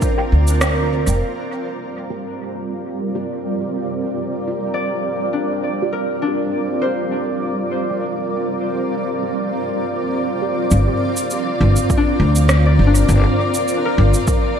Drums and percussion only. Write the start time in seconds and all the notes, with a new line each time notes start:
0.02 kick, shaker
0.47 shaker
0.61 cross-stick, shaker
1.07 shaker
10.71 shaker
11.17 shaker
11.30 shaker
11.76 shaker
11.90 kick, shaker
12.36 shaker
12.49 cross-stick, shaker
12.95 shaker
13.09 shaker
13.54 shaker
13.68 shaker
14.14 shaker
14.27 kick, shaker